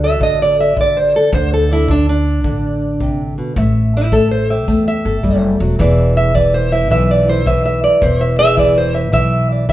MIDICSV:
0, 0, Header, 1, 4, 480
1, 0, Start_track
1, 0, Tempo, 557621
1, 1147, Time_signature, 4, 2, 24, 8
1, 8372, End_track
2, 0, Start_track
2, 0, Title_t, "Steel-string acoustic guitar"
2, 0, Program_c, 0, 25
2, 0, Note_on_c, 0, 50, 74
2, 0, Note_on_c, 0, 66, 46
2, 31, Note_on_c, 0, 69, 52
2, 36, Note_on_c, 0, 76, 105
2, 168, Note_off_c, 0, 50, 0
2, 171, Note_on_c, 0, 50, 75
2, 190, Note_off_c, 0, 76, 0
2, 199, Note_on_c, 0, 75, 94
2, 352, Note_off_c, 0, 75, 0
2, 364, Note_on_c, 0, 74, 88
2, 502, Note_off_c, 0, 69, 0
2, 505, Note_on_c, 0, 69, 43
2, 515, Note_off_c, 0, 74, 0
2, 521, Note_on_c, 0, 76, 86
2, 649, Note_off_c, 0, 50, 0
2, 659, Note_on_c, 0, 50, 65
2, 674, Note_off_c, 0, 76, 0
2, 695, Note_on_c, 0, 74, 97
2, 831, Note_off_c, 0, 69, 0
2, 835, Note_on_c, 0, 72, 96
2, 840, Note_off_c, 0, 74, 0
2, 990, Note_off_c, 0, 72, 0
2, 999, Note_on_c, 0, 69, 92
2, 1124, Note_off_c, 0, 50, 0
2, 1126, Note_off_c, 0, 66, 0
2, 1152, Note_on_c, 0, 50, 73
2, 1153, Note_off_c, 0, 69, 0
2, 1158, Note_on_c, 0, 72, 97
2, 1312, Note_off_c, 0, 72, 0
2, 1323, Note_on_c, 0, 69, 90
2, 1472, Note_on_c, 0, 62, 49
2, 1475, Note_off_c, 0, 69, 0
2, 1487, Note_on_c, 0, 64, 102
2, 1609, Note_off_c, 0, 50, 0
2, 1620, Note_on_c, 0, 50, 73
2, 1628, Note_off_c, 0, 62, 0
2, 1637, Note_off_c, 0, 64, 0
2, 1643, Note_on_c, 0, 62, 95
2, 1791, Note_off_c, 0, 62, 0
2, 1801, Note_on_c, 0, 62, 107
2, 2092, Note_off_c, 0, 50, 0
2, 2102, Note_on_c, 0, 50, 74
2, 2588, Note_on_c, 0, 48, 66
2, 2754, Note_off_c, 0, 62, 0
2, 2906, Note_off_c, 0, 48, 0
2, 2909, Note_on_c, 0, 47, 62
2, 3046, Note_off_c, 0, 50, 0
2, 3067, Note_off_c, 0, 47, 0
2, 3075, Note_on_c, 0, 57, 68
2, 3082, Note_on_c, 0, 76, 46
2, 3417, Note_on_c, 0, 64, 107
2, 3539, Note_off_c, 0, 57, 0
2, 3549, Note_on_c, 0, 57, 74
2, 3556, Note_on_c, 0, 69, 93
2, 3562, Note_off_c, 0, 64, 0
2, 3711, Note_off_c, 0, 69, 0
2, 3714, Note_on_c, 0, 72, 92
2, 3871, Note_off_c, 0, 72, 0
2, 3874, Note_off_c, 0, 76, 0
2, 3876, Note_on_c, 0, 67, 48
2, 3877, Note_on_c, 0, 76, 87
2, 4019, Note_off_c, 0, 57, 0
2, 4029, Note_on_c, 0, 57, 75
2, 4191, Note_off_c, 0, 76, 0
2, 4200, Note_on_c, 0, 76, 112
2, 4353, Note_on_c, 0, 69, 47
2, 4505, Note_on_c, 0, 55, 59
2, 4673, Note_off_c, 0, 76, 0
2, 4826, Note_off_c, 0, 55, 0
2, 4829, Note_on_c, 0, 54, 61
2, 4969, Note_off_c, 0, 57, 0
2, 4970, Note_off_c, 0, 69, 0
2, 4972, Note_off_c, 0, 67, 0
2, 4981, Note_off_c, 0, 54, 0
2, 4984, Note_on_c, 0, 52, 73
2, 4988, Note_on_c, 0, 64, 49
2, 4992, Note_on_c, 0, 68, 48
2, 5002, Note_on_c, 0, 74, 47
2, 5309, Note_off_c, 0, 74, 0
2, 5312, Note_on_c, 0, 76, 105
2, 5465, Note_off_c, 0, 76, 0
2, 5465, Note_on_c, 0, 74, 92
2, 5466, Note_off_c, 0, 52, 0
2, 5469, Note_on_c, 0, 52, 75
2, 5626, Note_off_c, 0, 74, 0
2, 5628, Note_off_c, 0, 68, 0
2, 5632, Note_on_c, 0, 72, 97
2, 5788, Note_off_c, 0, 64, 0
2, 5788, Note_on_c, 0, 76, 88
2, 5790, Note_off_c, 0, 72, 0
2, 5792, Note_on_c, 0, 64, 53
2, 5940, Note_off_c, 0, 76, 0
2, 5943, Note_off_c, 0, 52, 0
2, 5947, Note_on_c, 0, 52, 76
2, 5953, Note_on_c, 0, 76, 110
2, 6120, Note_off_c, 0, 76, 0
2, 6120, Note_on_c, 0, 74, 91
2, 6263, Note_off_c, 0, 64, 0
2, 6266, Note_on_c, 0, 64, 45
2, 6274, Note_off_c, 0, 74, 0
2, 6279, Note_on_c, 0, 72, 82
2, 6416, Note_off_c, 0, 52, 0
2, 6420, Note_on_c, 0, 52, 72
2, 6431, Note_on_c, 0, 76, 101
2, 6433, Note_off_c, 0, 72, 0
2, 6580, Note_off_c, 0, 76, 0
2, 6590, Note_on_c, 0, 76, 109
2, 6744, Note_off_c, 0, 76, 0
2, 6748, Note_on_c, 0, 74, 100
2, 6894, Note_off_c, 0, 52, 0
2, 6898, Note_on_c, 0, 52, 70
2, 6908, Note_off_c, 0, 74, 0
2, 6912, Note_on_c, 0, 72, 102
2, 7066, Note_on_c, 0, 76, 102
2, 7070, Note_off_c, 0, 72, 0
2, 7212, Note_off_c, 0, 76, 0
2, 7222, Note_on_c, 0, 76, 125
2, 7227, Note_on_c, 0, 68, 49
2, 7373, Note_off_c, 0, 52, 0
2, 7377, Note_on_c, 0, 52, 72
2, 7385, Note_off_c, 0, 76, 0
2, 7395, Note_on_c, 0, 74, 90
2, 7421, Note_off_c, 0, 64, 0
2, 7552, Note_off_c, 0, 68, 0
2, 7552, Note_off_c, 0, 74, 0
2, 7556, Note_on_c, 0, 72, 99
2, 7701, Note_on_c, 0, 76, 97
2, 7712, Note_off_c, 0, 72, 0
2, 7849, Note_off_c, 0, 52, 0
2, 7852, Note_on_c, 0, 52, 82
2, 7854, Note_off_c, 0, 76, 0
2, 7864, Note_on_c, 0, 76, 124
2, 8189, Note_off_c, 0, 76, 0
2, 8195, Note_on_c, 0, 74, 47
2, 8336, Note_off_c, 0, 52, 0
2, 8339, Note_on_c, 0, 52, 78
2, 8342, Note_off_c, 0, 74, 0
2, 8346, Note_on_c, 0, 76, 110
2, 8372, Note_off_c, 0, 52, 0
2, 8372, Note_off_c, 0, 76, 0
2, 8372, End_track
3, 0, Start_track
3, 0, Title_t, "Upright bass"
3, 0, Program_c, 1, 32
3, 0, Note_on_c, 1, 38, 88
3, 180, Note_off_c, 1, 38, 0
3, 180, Note_on_c, 1, 33, 94
3, 989, Note_off_c, 1, 33, 0
3, 1143, Note_on_c, 1, 38, 93
3, 2102, Note_off_c, 1, 38, 0
3, 2102, Note_on_c, 1, 33, 100
3, 2910, Note_off_c, 1, 33, 0
3, 3067, Note_on_c, 1, 33, 93
3, 4028, Note_off_c, 1, 33, 0
3, 4028, Note_on_c, 1, 40, 88
3, 4299, Note_off_c, 1, 40, 0
3, 4347, Note_on_c, 1, 31, 77
3, 4490, Note_off_c, 1, 31, 0
3, 4507, Note_on_c, 1, 30, 78
3, 4797, Note_off_c, 1, 30, 0
3, 4823, Note_on_c, 1, 28, 79
3, 4968, Note_off_c, 1, 28, 0
3, 4991, Note_on_c, 1, 28, 91
3, 5945, Note_off_c, 1, 28, 0
3, 5945, Note_on_c, 1, 35, 91
3, 6753, Note_off_c, 1, 35, 0
3, 6902, Note_on_c, 1, 28, 93
3, 7859, Note_off_c, 1, 28, 0
3, 7859, Note_on_c, 1, 35, 98
3, 8372, Note_off_c, 1, 35, 0
3, 8372, End_track
4, 0, Start_track
4, 0, Title_t, "Drums"
4, 180, Note_on_c, 9, 36, 62
4, 266, Note_off_c, 9, 36, 0
4, 662, Note_on_c, 9, 36, 62
4, 748, Note_off_c, 9, 36, 0
4, 1142, Note_on_c, 9, 36, 60
4, 1228, Note_off_c, 9, 36, 0
4, 1623, Note_on_c, 9, 36, 64
4, 1709, Note_off_c, 9, 36, 0
4, 2104, Note_on_c, 9, 36, 65
4, 2190, Note_off_c, 9, 36, 0
4, 2586, Note_on_c, 9, 36, 58
4, 2672, Note_off_c, 9, 36, 0
4, 3067, Note_on_c, 9, 36, 65
4, 3153, Note_off_c, 9, 36, 0
4, 3548, Note_on_c, 9, 36, 67
4, 3634, Note_off_c, 9, 36, 0
4, 4028, Note_on_c, 9, 36, 64
4, 4114, Note_off_c, 9, 36, 0
4, 4508, Note_on_c, 9, 36, 63
4, 4594, Note_off_c, 9, 36, 0
4, 4988, Note_on_c, 9, 36, 60
4, 5074, Note_off_c, 9, 36, 0
4, 5467, Note_on_c, 9, 36, 72
4, 5553, Note_off_c, 9, 36, 0
4, 5946, Note_on_c, 9, 36, 68
4, 6032, Note_off_c, 9, 36, 0
4, 6426, Note_on_c, 9, 36, 63
4, 6512, Note_off_c, 9, 36, 0
4, 6903, Note_on_c, 9, 36, 63
4, 6989, Note_off_c, 9, 36, 0
4, 7381, Note_on_c, 9, 36, 67
4, 7467, Note_off_c, 9, 36, 0
4, 7860, Note_on_c, 9, 36, 70
4, 7947, Note_off_c, 9, 36, 0
4, 8341, Note_on_c, 9, 36, 62
4, 8372, Note_off_c, 9, 36, 0
4, 8372, End_track
0, 0, End_of_file